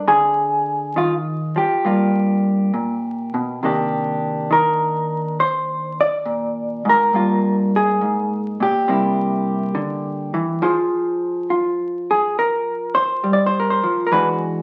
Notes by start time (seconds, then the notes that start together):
0.08 D3 G#4
0.96 D#3 F4
1.56 F3 G4
1.85 G2 A#3 F4
2.74 A#2
3.34 B2
3.63 C3 D#3 A#3 D4 G4
4.51 D#3 A#4
5.40 C5
6.01 D5
6.25 A#2
6.85 G#2
6.89 A#4
7.13 G2 A#3 F4
7.76 G#4
8.01 G#2
8.60 A#2 G4
8.88 C3 G3 A#3 E4
9.75 D3
10.34 E3
10.62 F3 F4 G#4 C5
11.50 F4
12.11 G#4
12.39 A#4
12.95 C5
13.24 G3
13.33 D5
13.46 C5
13.60 A#4
13.70 C5
13.83 F3
14.07 A#4
14.12 E3 G#3 D4 F#4 B4